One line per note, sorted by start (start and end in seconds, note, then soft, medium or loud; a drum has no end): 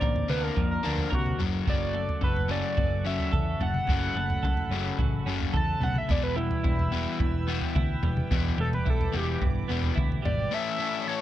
0.00 0.22 A1 medium
0.00 0.84 D3 medium
0.00 0.26 D3 medium
0.00 0.26 A#3 medium
0.00 1.11 C4 medium
0.00 1.09 A#4 medium
0.00 1.35 C5 medium
0.00 0.28 D5 loud
0.00 1.36 A#5 medium
0.00 1.36 D6 medium
0.00 kick medium
0.16 floor tom medium
0.28 0.49 D2 medium
0.28 0.54 D3 medium
0.28 0.55 A#3 medium
0.28 0.82 D4 medium
0.28 0.55 D4 medium
0.28 0.42 B4 medium
0.28 mid tom medium
0.44 0.70 A#4 medium
0.56 0.77 F2 medium
0.56 0.81 D3 medium
0.56 1.39 F3 medium
0.56 0.81 A#3 medium
0.56 kick loud
0.56 floor tom medium
0.71 1.11 A#4 medium
0.83 1.05 D2 medium
0.83 1.10 D3 medium
0.83 1.10 A#3 medium
0.83 1.39 D4 medium
0.83 1.10 D4 medium
0.98 floor tom medium
1.10 1.32 C3 medium
1.10 1.37 D3 medium
1.10 1.37 A#3 medium
1.10 1.40 F#4 medium
1.10 1.39 A#4 medium
1.10 kick medium
1.10 mid tom medium
1.26 floor tom medium
1.37 1.60 F#1 medium
1.37 1.65 F#2 medium
1.37 1.65 C#3 medium
1.37 1.66 F#3 medium
1.37 6.04 A4 medium
1.37 6.05 F#5 medium
1.37 3.57 C#6 medium
1.37 floor tom medium
1.66 2.07 F#1 medium
1.66 3.05 F#2 medium
1.66 1.93 F#2 medium
1.66 1.93 C#3 medium
1.66 1.94 F#3 medium
1.66 2.22 D5 loud
1.66 kick loud
1.66 floor tom medium
1.94 2.19 F#2 medium
1.94 2.19 C#3 medium
1.94 3.32 A3 medium
2.09 floor tom medium
2.21 2.62 F#1 medium
2.21 2.47 F#2 medium
2.21 2.47 C#3 medium
2.21 3.31 A4 medium
2.21 2.50 B4 medium
2.21 kick loud
2.36 floor tom medium
2.48 2.75 F#2 medium
2.48 2.75 C#3 medium
2.48 2.76 F#3 medium
2.48 3.03 C#4 medium
2.48 3.04 D5 medium
2.77 3.18 F#1 medium
2.77 3.02 F#2 medium
2.77 3.02 C#3 medium
2.77 4.16 F#3 medium
2.77 kick loud
2.77 floor tom medium
3.04 3.31 F#2 medium
3.04 3.31 C#3 medium
3.04 3.32 F#3 medium
3.04 4.43 C#4 medium
3.04 3.59 E5 medium
3.20 floor tom medium
3.32 3.53 E2 medium
3.32 3.58 F#2 medium
3.32 3.58 C#3 medium
3.32 4.42 A4 medium
3.32 kick loud
3.32 mid tom medium
3.58 3.80 F#1 medium
3.58 3.86 F#2 medium
3.58 3.86 C#3 medium
3.58 4.15 A3 medium
3.58 6.06 B5 medium
3.58 floor tom medium
3.62 5.23 F#5 loud
3.74 mid tom medium
3.87 4.08 F#1 medium
3.87 5.26 F#2 medium
3.87 4.14 F#2 medium
3.87 4.15 C#3 medium
3.87 4.15 F#3 medium
3.87 kick loud
3.87 floor tom medium
4.15 4.36 F#1 medium
4.15 4.41 F#2 medium
4.15 4.41 C#3 medium
4.15 5.54 A3 medium
4.30 floor tom medium
4.43 4.63 C#2 medium
4.43 4.69 F#2 medium
4.43 4.69 C#3 medium
4.43 5.52 A4 medium
4.43 kick loud
4.57 floor tom medium
4.70 4.90 F#1 medium
4.70 4.97 F#2 medium
4.70 4.98 C#3 medium
4.70 4.98 F#3 medium
4.70 5.25 C#4 medium
4.98 5.19 A1 medium
4.98 5.24 F#2 medium
4.98 5.24 C#3 medium
4.98 6.09 F#3 medium
4.98 kick loud
4.98 floor tom medium
5.26 5.46 F#1 medium
5.26 5.53 F#2 medium
5.26 5.53 C#3 medium
5.26 5.54 F#3 medium
5.26 6.09 C#4 medium
5.40 floor tom medium
5.53 5.74 E2 medium
5.53 5.80 F#2 medium
5.53 5.80 C#3 medium
5.53 6.09 A4 medium
5.53 5.82 A5 medium
5.53 kick loud
5.53 mid tom medium
5.80 6.01 B1 medium
5.80 6.07 F#2 medium
5.80 6.08 C#3 medium
5.80 6.09 A3 medium
5.80 5.96 F#5 loud
5.80 floor tom medium
5.96 6.10 E5 medium
5.96 mid tom medium
6.07 6.49 E1 medium
6.07 6.35 E2 medium
6.07 6.36 B2 medium
6.07 7.19 E3 medium
6.07 6.36 E3 medium
6.07 10.47 B4 medium
6.07 6.23 D5 medium
6.07 10.48 G5 medium
6.07 8.28 E6 medium
6.07 kick loud
6.07 floor tom medium
6.23 6.36 B4 medium
6.36 6.62 E2 medium
6.36 6.62 B2 medium
6.36 7.75 G3 medium
6.36 7.99 E4 loud
6.51 floor tom medium
6.63 7.05 E1 medium
6.63 6.89 E2 medium
6.63 6.90 B2 medium
6.63 7.75 E4 medium
6.63 kick loud
6.79 floor tom medium
6.92 7.18 E2 medium
6.92 7.18 B2 medium
6.92 7.19 E3 medium
6.92 7.46 B3 medium
7.19 7.60 E1 medium
7.19 7.45 E2 medium
7.19 7.45 B2 medium
7.19 8.30 E3 medium
7.19 kick loud
7.19 floor tom medium
7.47 7.74 E2 medium
7.47 7.74 B2 loud
7.47 7.75 E3 medium
7.47 8.86 B3 medium
7.61 floor tom medium
7.75 7.96 D2 medium
7.75 8.01 E2 medium
7.75 8.01 B2 medium
7.75 8.84 E4 medium
7.75 kick loud
7.75 mid tom medium
8.03 8.23 E1 medium
8.03 8.28 E2 medium
8.03 8.28 B2 medium
8.03 8.57 G3 medium
8.03 floor tom medium
8.17 mid tom medium
8.30 8.51 E1 medium
8.30 8.57 E2 medium
8.30 8.57 B2 medium
8.30 9.38 E3 medium
8.30 8.57 E3 medium
8.30 10.49 D6 medium
8.30 kick loud
8.30 floor tom medium
8.45 floor tom medium
8.58 8.78 E1 medium
8.58 8.83 E2 medium
8.58 8.83 B2 medium
8.58 9.97 G3 medium
8.58 8.72 A4 medium
8.73 8.86 B4 medium
8.73 floor tom medium
8.85 9.06 B1 medium
8.85 9.11 E2 medium
8.85 9.11 B2 medium
8.85 9.94 E4 medium
8.85 kick loud
8.90 9.15 A4 medium
9.01 floor tom medium
9.12 9.35 E1 loud
9.12 9.39 E2 medium
9.12 9.40 B2 medium
9.12 9.40 E3 medium
9.12 9.67 B3 medium
9.12 mid tom medium
9.17 9.42 G4 medium
9.40 9.62 G1 medium
9.40 9.66 E2 medium
9.40 9.67 B2 loud
9.40 10.51 E3 medium
9.40 kick loud
9.40 floor tom medium
9.68 9.90 E1 loud
9.68 9.95 E2 medium
9.68 9.96 B2 medium
9.68 9.96 E3 loud
9.68 10.51 B3 medium
9.83 floor tom medium
9.96 10.17 D2 medium
9.96 10.22 E2 medium
9.96 10.22 B2 medium
9.96 10.51 E4 medium
9.96 kick loud
9.96 mid tom medium
10.12 floor tom medium
10.22 10.45 G#1 medium
10.22 10.50 E2 medium
10.22 10.50 B2 medium
10.22 10.51 G3 medium
10.22 10.55 D5 loud
10.22 floor tom medium
10.51 10.78 A2 loud
10.51 10.79 E3 medium
10.51 10.79 A3 medium
10.51 10.80 C#4 loud
10.51 10.80 A4 loud
10.51 11.21 C#5 medium
10.51 11.09 E5 loud
10.51 11.21 A5 medium
10.51 11.21 E6 medium
10.79 11.07 A2 medium
10.79 11.07 E3 medium
10.79 11.07 A3 medium
10.79 11.08 C#4 loud
10.79 11.08 A4 medium
11.07 11.21 A2 medium
11.07 11.21 E3 medium
11.07 11.21 A3 medium
11.07 11.21 C#4 medium
11.07 11.21 A4 medium
11.07 11.21 C#5 loud